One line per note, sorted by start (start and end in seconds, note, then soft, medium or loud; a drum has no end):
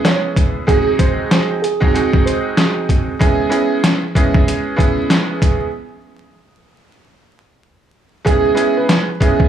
0.00 0.61 G#3 medium
0.00 0.61 B3 medium
0.00 0.61 C#4 medium
0.00 0.62 E4 medium
0.00 0.62 G#4 loud
0.05 0.33 C#5 medium
0.05 snare loud
0.05 closed hi-hat medium
0.36 kick medium
0.36 closed hi-hat medium
0.67 1.56 G#3 medium
0.67 1.56 C4 medium
0.67 1.57 D#4 medium
0.67 1.57 F#4 medium
0.67 0.96 G#4 loud
0.67 1.57 G#4 loud
0.67 kick loud
0.67 closed hi-hat medium
0.99 1.28 C5 medium
0.99 kick medium
0.99 closed hi-hat medium
1.31 1.60 C5 medium
1.31 snare loud
1.31 closed hi-hat loud
1.62 1.91 G#4 medium
1.62 closed hi-hat medium
1.80 1.93 G#3 loud
1.80 1.93 C4 medium
1.80 1.94 D#4 medium
1.80 1.94 F#4 medium
1.80 1.95 G#4 loud
1.80 kick loud
1.94 3.12 G#3 medium
1.94 3.13 C4 medium
1.94 3.13 D#4 medium
1.94 3.13 F#4 medium
1.94 3.14 G#4 loud
1.94 closed hi-hat medium
2.13 kick medium
2.26 2.43 C5 medium
2.26 closed hi-hat medium
2.57 snare loud
2.57 closed hi-hat medium
2.89 kick medium
2.89 closed hi-hat medium
3.19 3.48 G#3 medium
3.19 3.48 B3 medium
3.19 3.49 C#4 medium
3.19 3.49 E4 medium
3.19 3.50 G#4 loud
3.19 kick loud
3.19 closed hi-hat medium
3.49 3.97 G#3 medium
3.49 3.97 B3 medium
3.49 3.97 C#4 medium
3.49 3.98 E4 medium
3.49 3.98 G#4 loud
3.49 closed hi-hat medium
3.84 snare loud
3.84 closed hi-hat loud
4.15 4.74 G#3 medium
4.15 4.75 B3 medium
4.15 4.75 C#4 medium
4.15 4.75 E4 medium
4.15 4.75 G#4 loud
4.15 kick medium
4.15 closed hi-hat medium
4.34 kick loud
4.48 closed hi-hat medium
4.76 5.66 G#3 medium
4.76 5.66 B3 medium
4.76 5.67 C#4 medium
4.76 5.67 E4 medium
4.76 5.67 G#4 loud
4.76 kick loud
4.76 closed hi-hat medium
5.10 snare loud
5.10 closed hi-hat medium
5.42 kick medium
5.42 closed hi-hat medium
8.25 8.53 G#3 loud
8.25 8.53 B3 medium
8.25 8.54 C#4 medium
8.25 8.54 E4 medium
8.25 8.73 G#4 loud
8.25 8.55 G#4 loud
8.25 kick loud
8.25 closed hi-hat medium
8.54 9.02 G#3 medium
8.54 9.02 B3 medium
8.54 9.03 C#4 medium
8.54 9.03 E4 medium
8.54 9.03 G#4 loud
8.54 closed hi-hat medium
8.77 9.48 B4 medium
8.89 snare loud
8.89 closed hi-hat loud
9.20 9.48 G#3 medium
9.20 9.48 B3 medium
9.20 9.48 C#4 medium
9.20 9.48 E4 medium
9.20 9.48 G#4 loud
9.20 kick medium
9.20 closed hi-hat medium
9.40 kick loud